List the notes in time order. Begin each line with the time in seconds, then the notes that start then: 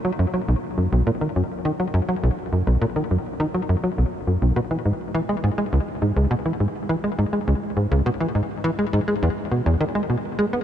0.05 F#3
0.19 F#2
0.34 F#3
0.48 B1
0.78 F#2
0.92 B1
1.07 A#2
1.21 D#3
1.36 F#2
1.65 D#3
1.80 F#3
1.94 F#2
2.09 F#3
2.23 B1
2.52 F#2
2.67 B1
2.81 A#2
2.96 D#3
3.11 F#2
3.40 D#3
3.54 F#3
3.69 F#2
3.83 F#3
3.98 B1
4.27 F#2
4.42 B1
4.56 B2
4.71 E3
4.85 G#2
5.14 E3
5.29 G#3
5.44 G#2
5.58 G#3
5.73 C#2
6.02 G#2
6.16 C#2
6.31 B2
6.46 E3
6.60 G#2
6.89 E3
7.04 G#3
7.18 G#2
7.33 G#3
7.47 C#2
7.77 G#2
7.91 C#2
8.06 B2
8.20 E3
8.35 G#2
8.64 E3
8.79 G#3
8.93 G#2
9.08 G#3
9.22 E2
9.51 B2
9.66 E2
9.81 D#3
9.95 G#3
10.10 B2
10.39 G#3
10.53 B3